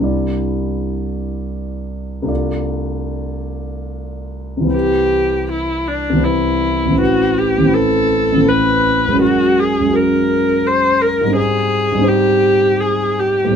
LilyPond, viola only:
\new Staff \with { instrumentName = "Viola" } { \time 3/4 \key c \lydian \tempo 4 = 81 r2. | r2. | g'4 e'8 d'8 e'4 | fis'8 g'8 a'4 b'4 |
fis'8 gis'8 ais'4 c''8 ais'8 | aes'4 g'4 aes'8 g'8 | }